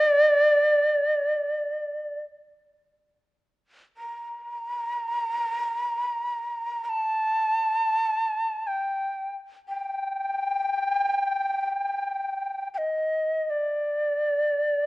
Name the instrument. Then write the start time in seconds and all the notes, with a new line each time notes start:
shakuhachi
Already playing: D5
3.97 A#5
6.85 A5 A#5
8.67 G5
9.68 G5
12.74 D#5 G5
13.50 D5